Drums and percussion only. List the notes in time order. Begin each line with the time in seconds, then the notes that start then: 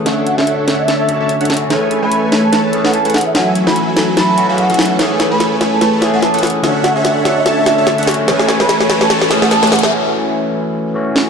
0.06 snare, closed hi-hat
0.27 closed hi-hat
0.38 snare
0.47 closed hi-hat
0.68 snare, closed hi-hat
0.88 snare, closed hi-hat
1.09 closed hi-hat
1.29 closed hi-hat
1.41 closed hi-hat
1.45 closed hi-hat
1.50 snare, closed hi-hat
1.54 closed hi-hat
1.57 closed hi-hat
1.70 snare, closed hi-hat
1.91 closed hi-hat
2.12 closed hi-hat
2.32 snare, closed hi-hat
2.53 snare, closed hi-hat
2.73 closed hi-hat
2.85 snare
2.94 closed hi-hat
3.05 closed hi-hat
3.10 closed hi-hat
3.14 snare, closed hi-hat
3.18 closed hi-hat
3.21 closed hi-hat
3.35 snare, closed hi-hat
3.55 closed hi-hat
3.67 snare
3.76 closed hi-hat
3.97 snare, closed hi-hat
4.17 snare, closed hi-hat
4.38 closed hi-hat
4.58 closed hi-hat
4.70 closed hi-hat
4.74 closed hi-hat
4.79 snare, closed hi-hat
4.83 closed hi-hat
4.86 closed hi-hat
4.99 snare, closed hi-hat
5.20 snare, closed hi-hat
5.40 snare, closed hi-hat
5.61 snare, closed hi-hat
5.81 snare, closed hi-hat
6.02 snare, closed hi-hat
6.22 snare, closed hi-hat
6.34 closed hi-hat
6.39 closed hi-hat
6.43 snare, closed hi-hat, open hi-hat
6.50 closed hi-hat
6.64 snare, closed hi-hat
6.84 snare, closed hi-hat
7.05 snare, closed hi-hat
7.25 snare, closed hi-hat
7.46 snare, closed hi-hat
7.66 snare, closed hi-hat
7.87 snare, closed hi-hat
7.98 closed hi-hat
8.03 closed hi-hat
8.07 snare, closed hi-hat, open hi-hat
8.14 closed hi-hat
8.28 snare, closed hi-hat
8.39 snare
8.49 snare, closed hi-hat
8.60 snare
8.69 snare, closed hi-hat
8.81 snare
8.90 snare, closed hi-hat
9.01 snare
9.10 snare, closed hi-hat
9.22 snare
9.31 snare, closed hi-hat
9.42 snare
9.51 snare, closed hi-hat
9.63 snare, closed hi-hat
9.67 closed hi-hat
9.72 snare, closed hi-hat, open hi-hat
9.79 closed hi-hat
9.83 snare
11.16 snare